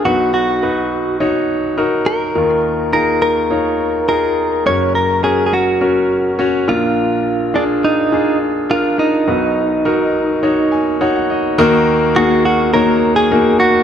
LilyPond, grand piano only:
<<
  \new Staff \with { instrumentName = "Grand piano" } { \time 4/4 \key ees \minor \tempo 4 = 104 << { r1 | r1 | r1 | r1 |
r2 r8 aes''8 fis''16 fis''16 dis''8 | r1 | } \\ { <dis' fis' b'>4 <dis' fis' b'>4 <dis' fis' des''>4 <dis' fis' bes'>4 | <ees' f' bes'>4 <ees' f' aes'>4 <ees' f' des''>4 <ees' f' aes'>4 | <des' ges' bes'>4 <des' ges' bes'>4 <des' ges' bes'>4 <des' ges' des''>8 <d' f' bes'>8~ | <d' f' bes'>8. r16 <d' f' aes'>4 <d' f' aes'>4 <d' f' bes'>4 |
<dis' fis' b'>4 <dis' fis' bes'>4 <dis' fis' des''>4 <dis' fis' des''>4 | <bes ees' ges' bes'>4 <bes ees' ges' aes'>4 <bes ees' ges' des''>4 <bes ees' ges' bes'>4 | } >> }
  \new Staff \with { instrumentName = "Grand piano" } { \clef bass \time 4/4 \key ees \minor <b,, b,>1 | <ees, ees>1 | <ges,, ges,>2.~ <ges,, ges,>8 <bes,, bes,>8~ | <bes,, bes,>2.~ <bes,, bes,>8 r8 |
<b,, b,>1 | <ees, ees>1 | }
>>